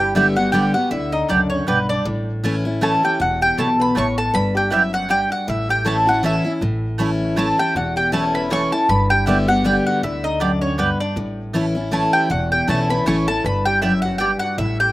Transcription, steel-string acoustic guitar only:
0.00 0.51 G2 medium
0.15 0.36 D3 medium
0.15 0.36 G3 medium
0.15 0.36 B3 medium
0.15 0.35 G4 medium
0.36 0.53 B3 medium
0.36 0.53 G4 medium
0.53 0.73 D3 medium
0.53 0.74 G3 medium
0.53 0.74 B3 medium
0.53 0.73 G4 medium
0.74 0.92 B3 soft
0.74 0.91 G4 medium
0.91 1.64 D3 medium
1.29 1.66 F#2 medium
1.68 2.04 G2 medium
2.05 2.78 A2 medium
2.44 2.64 E3 medium
2.44 2.64 A3 medium
2.44 2.65 C#4 medium
2.44 2.64 E4 loud
2.65 2.81 C#4 medium
2.65 2.81 E4 medium
2.81 3.02 E3 medium
2.81 3.02 A3 medium
2.81 3.02 C#4 medium
2.81 3.02 E4 medium
3.03 3.20 C#4 soft
3.03 3.19 E4 medium
3.20 3.92 E2 medium
3.58 3.94 B2 medium
3.97 4.33 A2 medium
4.34 4.72 G2 medium
4.72 5.08 F#2 medium
5.10 5.46 G2 medium
5.48 6.20 A2 medium
5.85 6.05 E3 medium
5.85 6.06 A3 medium
5.85 6.06 C#4 medium
5.85 6.06 E4 loud
6.07 6.23 C#4 medium
6.07 6.23 E4 medium
6.23 6.43 E3 medium
6.23 6.44 A3 medium
6.23 6.44 C#4 medium
6.23 6.43 E4 medium
6.44 6.62 C#4 soft
6.44 6.61 E4 medium
6.62 7.34 A2 medium
6.99 7.35 E3 medium
6.99 7.36 A3 medium
6.99 7.36 C#4 medium
6.99 7.36 E4 medium
7.37 7.57 E3 medium
7.37 7.57 A3 medium
7.37 7.58 C#4 medium
7.37 7.56 E4 loud
7.57 7.75 C#4 soft
7.57 7.74 E4 medium
7.76 8.48 E2 medium
8.12 8.49 E3 medium
8.12 8.50 A3 loud
8.12 8.50 C#4 medium
8.12 8.50 E4 loud
8.50 8.71 E3 medium
8.50 8.71 A3 medium
8.50 8.71 C#4 medium
8.50 8.71 E4 medium
8.72 8.89 C#4 soft
8.72 8.89 E4 medium
8.89 9.62 G2 medium
9.27 9.47 D3 medium
9.27 9.48 G3 medium
9.27 9.48 B3 medium
9.27 9.46 G4 loud
9.48 9.64 B3 medium
9.48 9.64 G4 medium
9.64 10.01 D3 medium
9.64 10.01 G3 medium
9.64 10.02 B3 loud
9.64 10.02 G4 medium
10.03 10.76 D3 medium
10.41 10.77 F#2 medium
10.79 11.15 G2 medium
11.17 11.89 A2 medium
11.54 11.74 E3 medium
11.54 11.75 A3 medium
11.54 11.75 C#4 medium
11.54 11.74 E4 loud
11.75 11.92 C#4 soft
11.75 11.92 E4 medium
11.91 12.28 E3 medium
11.91 12.29 A3 medium
11.91 12.29 C#4 loud
11.91 12.29 E4 loud
12.30 13.03 E2 medium
12.68 12.88 E3 medium
12.68 12.89 A3 medium
12.68 12.89 C#4 medium
12.68 12.88 E4 loud
12.89 13.06 C#4 medium
12.89 13.06 E4 medium
13.06 13.26 E3 medium
13.06 13.27 A3 medium
13.06 13.27 C#4 medium
13.06 13.27 E4 loud
13.28 13.45 C#4 medium
13.28 13.44 E4 medium
13.46 13.83 G2 medium
13.83 14.19 F#2 medium
14.20 14.56 G2 medium
14.58 14.92 A2 medium

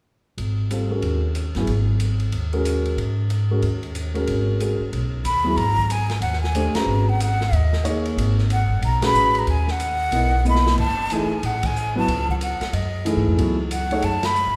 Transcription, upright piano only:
0.70 0.89 G3 soft
0.70 0.89 C4 soft
0.70 0.89 F4 soft
0.70 0.89 A4 medium
0.90 1.19 G#3 soft
0.90 1.19 C#4 soft
0.90 1.19 F#4 soft
0.90 1.20 A#4 soft
1.56 1.67 F#3 medium
1.56 1.67 B3 soft
1.56 1.68 E4 soft
1.56 1.68 G#4 medium
2.53 2.96 G#3 medium
2.53 2.96 C#4 medium
2.53 2.96 F#4 medium
2.53 2.96 A#4 medium
3.51 3.62 G#3 medium
3.51 3.62 C#4 soft
3.51 3.62 F#4 medium
3.51 3.62 A#4 medium
4.14 4.57 G#3 medium
4.14 4.57 C#4 medium
4.14 4.58 F#4 soft
4.14 4.58 A#4 medium
4.60 4.78 G#3 medium
4.60 4.79 C#4 soft
4.60 4.79 F#4 soft
4.60 4.79 A#4 medium
5.44 5.56 F#3 medium
5.44 5.56 B3 soft
5.44 5.56 E4 medium
5.44 5.57 G#4 medium
6.55 6.73 A3 medium
6.55 6.73 D4 medium
6.55 6.73 G4 soft
6.55 6.73 C5 medium
6.75 7.04 G#3 medium
6.75 7.04 C#4 soft
6.75 7.04 F#4 soft
6.75 7.05 B4 medium
7.84 8.33 A#3 medium
7.84 8.33 D#4 medium
7.84 8.34 G#4 medium
7.84 8.34 C#5 medium
9.02 9.45 G#3 medium
9.02 9.45 C#4 medium
9.02 9.45 F#4 medium
9.02 9.45 B4 medium
10.12 10.31 B3 soft
10.12 10.31 E4 soft
10.12 10.31 A#4 soft
10.12 10.32 D#5 medium
10.45 10.78 A#3 medium
10.45 10.78 B3 medium
10.45 10.78 E4 soft
10.45 10.78 D#5 medium
11.12 11.29 E3 medium
11.12 11.29 A3 medium
11.12 11.30 D#4 medium
11.12 11.30 G#4 medium
11.95 12.07 F#3 medium
11.95 12.07 B3 medium
11.95 12.08 E4 medium
11.95 12.08 B4 medium
13.05 13.54 E3 medium
13.05 13.55 A3 medium
13.05 13.55 D#4 medium
13.05 13.55 G#4 medium
13.37 13.56 F#3 soft
13.37 13.56 B3 soft
13.37 13.56 E4 soft
13.37 13.56 A4 medium
13.91 14.02 A3 medium
13.91 14.02 D#4 medium
13.91 14.03 G#4 medium
13.91 14.03 C#5 medium

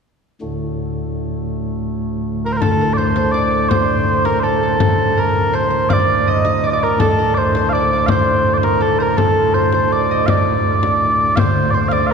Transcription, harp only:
2.46 2.69 A#4 medium
2.62 2.87 A4 medium
2.81 4.25 A#4 medium
2.98 3.16 C5 medium
3.16 3.70 C5 medium
3.34 5.18 D5 medium
3.71 5.53 C5 medium
4.26 4.50 A#4 medium
4.44 4.63 A4 medium
4.63 5.23 A4 medium
5.17 6.82 A#4 medium
5.53 5.70 C5 medium
5.70 7.37 C5 medium
5.90 6.33 D5 medium
6.27 6.45 D#5 medium
6.45 6.70 D#5 medium
6.64 6.73 D5 medium
6.73 7.74 D5 medium
6.83 7.07 A#4 medium
7.01 7.25 A4 medium
7.19 8.86 A#4 medium
7.37 7.56 C5 medium
7.57 8.11 C5 medium
7.75 7.93 D5 medium
7.93 9.78 D5 medium
8.12 9.54 C5 medium
8.80 9.06 A4 medium
9.00 9.23 A#4 medium
9.17 11.36 A4 medium
9.54 9.74 C5 medium
9.74 11.38 C5 medium
9.92 10.17 D5 medium
10.11 10.34 D#5 medium
10.28 11.92 D5 medium
11.39 11.74 C5 medium
11.74 12.13 C5 medium
11.92 12.13 D5 medium

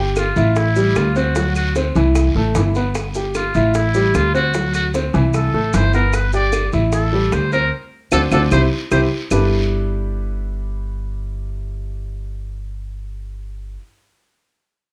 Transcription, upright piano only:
0.00 0.29 G4 medium
0.00 0.30 G5 medium
0.37 0.69 E4 medium
0.37 0.69 E5 medium
0.76 1.09 G3 medium
0.76 1.09 G4 medium
1.16 1.32 C4 medium
1.16 1.33 C5 medium
1.37 1.69 F#3 medium
1.37 1.69 F#4 medium
1.76 1.92 C4 medium
1.76 1.92 C5 medium
1.96 2.29 E3 medium
1.96 2.29 E4 medium
2.36 2.52 A3 medium
2.36 2.52 A4 medium
2.56 2.72 E3 medium
2.56 2.72 E4 medium
2.76 3.08 B3 medium
2.76 3.08 B4 medium
3.16 3.48 G4 medium
3.16 3.48 G5 medium
3.55 3.88 E4 medium
3.55 3.88 E5 medium
3.95 4.27 G3 medium
3.95 4.27 G4 medium
4.34 4.50 C4 medium
4.34 4.51 C5 medium
4.54 4.87 F#3 medium
4.54 4.87 F#4 medium
4.94 5.10 C4 medium
4.94 5.11 C5 medium
5.14 5.47 E3 medium
5.14 5.47 E4 medium
5.54 5.70 A3 medium
5.54 5.70 A4 medium
5.74 5.90 E3 medium
5.74 5.90 E4 medium
5.94 6.26 B3 medium
5.94 6.27 B4 medium
6.34 6.66 G4 medium
6.34 6.66 G5 medium
6.73 7.06 E4 medium
6.73 7.06 E5 medium
7.13 7.45 G3 medium
7.13 7.46 G4 medium
7.53 7.69 C4 medium
7.53 7.69 C5 medium
8.12 8.25 C4 medium
8.12 8.25 D4 medium
8.12 8.25 F#4 medium
8.32 8.45 C4 medium
8.32 8.45 D4 medium
8.32 8.45 F#4 medium
8.52 8.64 C4 medium
8.52 8.64 E4 medium
8.52 8.64 G4 medium
8.91 9.04 C4 medium
8.91 9.04 E4 medium
8.91 9.04 G4 medium
9.31 13.76 G3 medium
9.31 13.76 D4 medium
9.31 13.76 E4 medium
9.31 13.76 G4 medium
9.31 13.77 A4 medium
9.31 13.77 B4 medium

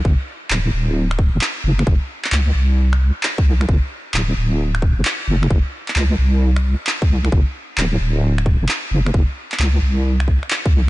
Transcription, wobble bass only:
0.05 0.17 G1 medium
0.51 0.70 D1 medium
0.73 1.29 D1 medium
1.34 1.40 F#1 medium
1.64 1.84 F#1 medium
1.87 1.99 F#1 loud
2.32 2.52 C#2 medium
2.55 3.11 C2 medium
3.46 3.66 C2 medium
3.69 3.81 G1 loud
4.14 4.34 D1 medium
4.37 4.93 D1 medium
4.97 5.04 F#1 medium
5.28 5.48 F#1 medium
5.50 5.63 F#1 loud
5.96 6.16 C#2 medium
6.19 6.75 C2 medium
7.10 7.29 C2 medium
7.32 7.45 G1 loud
7.78 7.98 D1 medium
8.00 8.56 D1 medium
8.61 8.67 F#1 medium
8.91 9.11 F#1 medium
9.14 9.26 F#1 loud
9.60 9.79 C#2 medium
9.82 10.38 C2 medium
10.73 10.90 C2 medium

